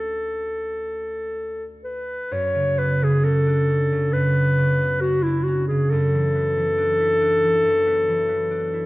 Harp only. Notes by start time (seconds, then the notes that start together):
Already playing: D2 A3 C#4 F#4 A4
2.31 F#2
2.54 C#3
2.78 B3
3.02 C#3
3.23 C#4
3.46 D4
3.69 C#4
3.92 C#3
4.13 F#2
4.37 B3
4.58 C#3
4.81 B3
5.04 C#4
5.26 D4
5.48 C#4
5.70 C#3
5.92 F#2
6.14 E3
6.35 B3
6.57 E3
6.77 D4
7.00 E4
7.21 D4
7.43 E3
7.64 F#2
7.86 B3
8.08 E3
8.29 B3
8.51 D4
8.74 E4